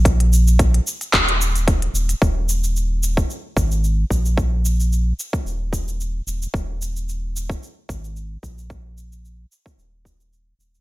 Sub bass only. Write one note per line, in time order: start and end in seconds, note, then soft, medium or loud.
0.00 0.80 A#1 loud
1.13 1.89 D#1 medium
1.94 2.14 D#1 medium
2.22 3.24 D#1 loud
3.56 4.05 G#1 medium
4.11 5.13 A#1 medium
5.45 6.21 D#1 medium
6.27 6.47 D#1 medium
6.54 7.56 D#1 medium
7.89 8.37 G#1 medium
8.43 9.45 A#1 medium
9.78 10.53 D#1 medium
10.59 10.79 D#1 medium